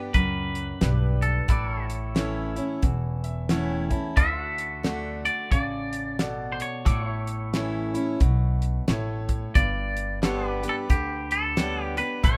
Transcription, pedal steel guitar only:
Already playing: G4 B4 D5
1.50 E4 B4 D5
1.72 C#5
1.76 A4
4.17 E4 A4 F5
4.39 F#4 F#5
6.85 F#4 A4 D5
7.07 E4 C#5
10.23 D4 A4 C#5
10.49 G4 B4
12.24 E4 A4 B4

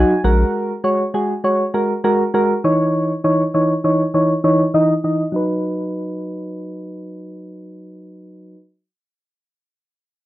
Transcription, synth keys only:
Already playing: F#3 D#4 F#4 G#5
0.24 G#3 F#4 A#4 F#5
0.84 G#3 F#4 C#5
1.14 G#3 F#4 G#4
1.44 G#3 F#4 C#5
1.74 G#3 F#4 A#4
2.04 G#3 F#4 A#4
2.34 G#3 F#4 A#4
2.64 E3 D#4 C#5
3.24 E3 D#4 C#5
3.54 E3 D#4 C#5
3.84 E3 D#4 C#5
4.14 E3 D#4 C#5
4.44 E3 D#4 C#5
4.74 E3 D#4 D#5
5.04 E3 D#4 D#5
5.32 F#3 D#4
5.36 B4

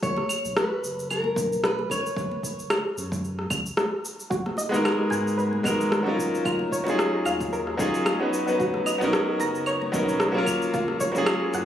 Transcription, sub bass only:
0.03 B1
0.45 B1
0.83 F#1
1.37 B1
2.17 F#1
2.58 F#1
2.97 F#2
3.51 C#2
4.31 G#1
4.73 G#1
5.11 G#2
5.65 G#1
6.45 D#1
6.87 D#1
7.26 D#2
7.79 D#1
8.60 B1
9.02 B1
9.40 F#1
9.94 B1
10.74 F#1
11.16 F#1
11.54 F#2

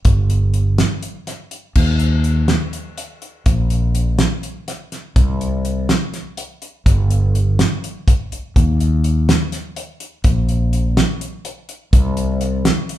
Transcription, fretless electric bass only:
0.05 G1
1.76 D#2
3.46 A#1
5.16 C2
6.86 G1
8.56 D#2
10.25 A#1
11.93 C2

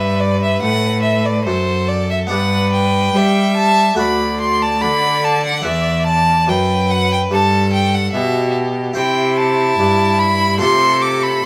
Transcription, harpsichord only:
Already playing: G2 D4 A4
0.63 A2
1.47 F#2
2.27 B3 D4 D5
2.31 G2
3.15 G3
3.95 A3 F#4 D5
3.99 D2
4.81 D3
5.62 E2 E4 B4
6.48 F#2
7.31 G2
8.14 B2
8.93 C3 E4 C5
9.79 G2
10.58 A3 F4 D5
10.62 C3

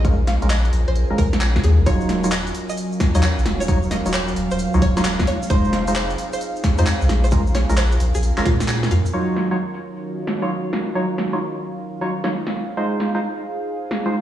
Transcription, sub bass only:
Already playing: A#1
0.42 A#1
0.73 A#1
0.88 A#1
1.10 G#1
1.18 A#1
1.56 C#2
1.64 D#2
1.78 G#1
1.86 D#1
3.15 D#2
3.38 A#1
3.46 D#1
4.06 D#1
4.36 D#1
4.51 D#1
4.74 C#2
4.82 D#1
5.50 F1
6.79 F2
7.01 C2
7.09 A#1
7.70 A#1
8.00 A#1
8.15 A#1
8.38 G#1
8.46 A#2
8.91 F2

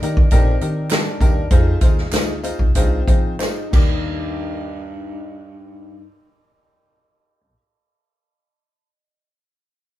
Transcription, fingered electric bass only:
0.02 D#3
0.32 A#1
0.61 D#3
1.20 D#2
1.51 F2
1.82 D#2
2.12 D2
2.59 C2
2.75 C2
3.08 F3
3.73 D#2

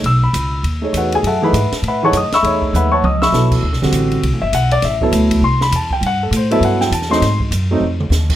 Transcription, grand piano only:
0.06 E6
0.24 B5
0.82 A3 D#4 G#4 C#5
0.97 F#4 B4 C#5 F#5
1.15 G#4 G#5
1.27 A4 E5 F#5 A5
1.42 E3 A3 D#4 G#4 B4 E5 F#5 B5
1.88 B4 E5 F#5 B5
2.03 E3 A3 D#4 G#4 C#5 F#5 A5 C#6
2.17 D#5 D#6
2.34 E5 B5 C#6 E6
2.43 A3 D#4 G#4 C#5
2.76 B4 E5 F#5 B5
2.92 C#5 F#5 A5 C#6
3.05 D#5 D#6
3.22 E5 B5 C#6 E6
3.32 F#3 B3 E4 A4
3.82 D3 G3 C4 F#4
4.42 E5
4.55 F#5
4.72 D5
4.85 E5
5.02 F#3 B3 E4 A4
5.44 C6
5.62 B5
5.76 A5
5.93 G5
6.07 F#5
6.23 A4
6.37 C5
6.51 F#3 B3 E4 A4 E5
6.65 F#5
6.81 G5
6.93 A5
7.10 F#3 A3 C4 D#4 C6
7.71 F#3 A3 C4 D#4

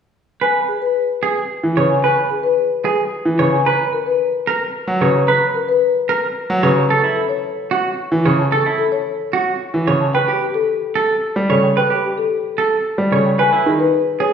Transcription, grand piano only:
1.63 E3
1.77 C#3
3.25 E3
3.39 C#3
4.87 F#3
5.01 C#3
6.50 F#3
6.63 C#3
8.12 E3
8.25 C#3
9.74 E3
9.88 C#3
11.36 G3
11.50 C#3
12.98 G3
13.12 C#3
13.66 D#3

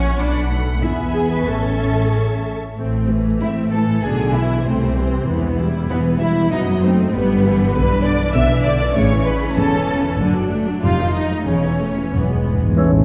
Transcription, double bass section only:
Already playing: A#1
0.18 B1
0.80 E2
1.47 A1
2.77 A1
3.40 A1
4.02 B1
4.65 C2
5.27 E1
5.90 E1
6.51 F#1
7.12 G1
7.74 B1
8.34 B1
8.95 A1
9.56 E1
10.19 F#1
10.82 F1
11.46 E1
12.11 E1
12.77 A1

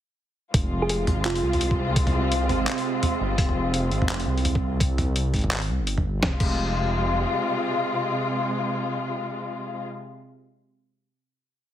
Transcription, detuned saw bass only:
0.54 F1
1.08 G#1
1.25 F1
1.43 C2
2.50 G#1
3.21 G1
3.38 F1
3.91 G#1
4.09 F1
4.27 C2
5.34 G#1
5.69 C2
5.80 G1
6.23 F1
6.40 F1

